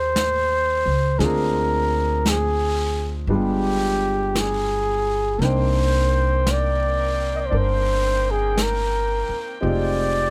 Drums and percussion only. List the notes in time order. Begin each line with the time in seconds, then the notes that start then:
0.16 brush sweep, snare, hi-hat pedal
1.20 brush sweep, snare
2.26 brush sweep, snare, hi-hat pedal
3.30 brush sweep
4.35 brush sweep, snare, hi-hat pedal
5.42 brush sweep, snare
6.47 brush sweep, snare, hi-hat pedal
7.52 brush sweep
8.57 brush sweep, snare, hi-hat pedal
9.63 brush sweep